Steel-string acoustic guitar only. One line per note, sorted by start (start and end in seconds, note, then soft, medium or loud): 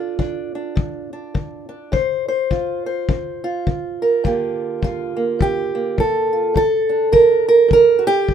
0.00 0.14 D3 medium
0.00 0.19 D4 soft
0.00 2.50 F4 medium
0.19 0.72 D3 medium
0.19 0.55 D4 medium
0.55 1.12 D4 soft
0.76 1.30 D3 medium
1.13 1.68 D4 soft
1.34 1.88 D3 medium
1.69 1.96 D4 soft
1.92 2.46 D3 medium
1.92 2.27 C5 medium
2.28 2.85 C5 medium
2.50 3.04 D3 medium
2.50 3.44 F4 medium
2.86 4.02 C5 medium
3.09 3.62 D3 medium
3.44 4.26 F4 medium
3.67 4.20 D3 medium
4.02 4.22 A#4 medium
4.24 4.78 G2 medium
4.24 8.34 D3 soft
4.24 5.16 A#3 medium
4.24 4.84 F4 medium
4.24 5.42 G4 soft
4.82 5.36 G2 medium
4.82 5.99 F4 medium
5.16 5.74 A#3 soft
5.39 5.93 G2 medium
5.39 5.99 G4 medium
5.75 6.53 A#3 soft
5.98 6.51 G2 medium
5.98 6.56 A4 medium
6.33 6.57 F4 soft
6.54 7.08 G2 medium
6.54 7.12 A4 loud
6.89 7.98 D4 soft
7.12 7.66 G2 medium
7.12 7.47 A#4 medium
7.49 7.71 A#4 medium
7.68 8.23 G2 medium
7.73 8.07 A#4 loud
7.99 8.06 F#4 medium
8.07 8.34 G4 loud
8.28 8.34 G2 medium